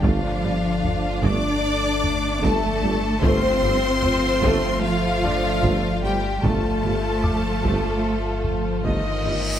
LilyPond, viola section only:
\new Staff \with { instrumentName = "Viola section" } { \time 4/4 \key f \mixolydian \tempo 4 = 75 << { d'1 | f'1 | f'2.~ f'8. r16 | } \\ { a8 g8 r8 a8 r4 a8 g8 | a8 g8 r8 a8 r4 a8 g8 | a8 g8 r8 a8 r4 a8 g8 | } >> }